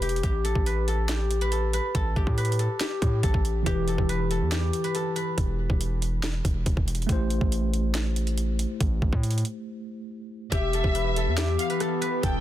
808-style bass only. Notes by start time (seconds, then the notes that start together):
Already playing: E1
0.23 A1
0.55 A1
1.95 A1
2.16 A1
2.27 A2
3.02 A2
3.23 A1
3.34 A1
3.66 E1
3.98 E1
4.41 E2
5.38 E1
5.70 E1
6.45 E1
6.66 E1
6.77 E1
7.09 A1
7.41 A1
8.81 A1
9.02 A1
9.13 A2
10.52 E1
10.84 E1
11.27 E2
12.23 E1